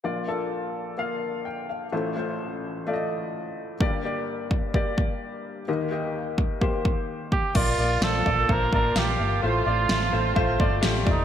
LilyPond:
<<
  \new Staff \with { instrumentName = "Trumpet" } { \time 4/4 \key bes \major \tempo 4 = 128 r1 | r1 | r1 | r2. r8 g'8 |
f'4 a'4 bes'8 bes'8 g'4 | f'2. r8 ees'8 | }
  \new Staff \with { instrumentName = "Upright piano" } { \time 4/4 \key bes \major << { r2. g''8 f''8~ | f''8 r2. r8 | r1 | r1 |
r1 | r1 | } \\ { <bes f' d''>8 <bes f' a'>4. <bes f' f''>2 | <a f' c''>8 <a f' c''>4. <a f' d'' ees''>2 | <bes g' d''>8 <bes g' d''>4. <bes g' d''>2 | <bes g' ees''>8 <bes g' ees''>4. <bes g' c''>2 |
<bes f' d''>8 <bes f' d''>8 <bes f' c''>8 <bes f' d''>8 <bes f' c''>8 <bes f' d''>8 <bes f' f''>8 <bes f' f''>8 | <a f' c''>8 <a f' d''>8 <a f' c''>8 <a f' c''>8 <a f' c''>8 <a f' d''>8 <a f' g'>8 <a f' d''>8 | } >> }
  \new Staff \with { instrumentName = "Upright piano" } { \clef bass \time 4/4 \key bes \major <bes,, bes,>1 | <a,, a,>1 | <g,, g,>1 | <ees, ees>1 |
bes,4. r2 r8 | a,4. r2 r8 | }
  \new Staff \with { instrumentName = "String section" } { \time 4/4 \key bes \major << { r1 | r1 | r1 | r1 |
f'1~ | f'1 | } \\ { r1 | r1 | r1 | r1 |
<bes d'>1 | <a c'>1 | } >> }
  \new Staff \with { instrumentName = "Fingered electric bass" } { \clef bass \time 4/4 \key bes \major r1 | r1 | r1 | r1 |
bes,,8 bes,,8 bes,,8 bes,,8 bes,,8 a,,8 bes,,8 g,,8 | a,,8 a,,8 a,,8 a,,8 a,,8 g,,8 a,,8 f,,8 | }
  \new DrumStaff \with { instrumentName = "Drums" } \drummode { \time 4/4 r4 r4 r4 r4 | r4 r4 r4 r4 | bd4 r8 bd8 bd8 bd8 r4 | r4 r8 bd8 bd8 bd8 r8 bd8 |
<cymc bd>4 sn8 bd8 bd8 bd8 sn4 | r4 sn4 bd8 bd8 sn8 bd8 | }
>>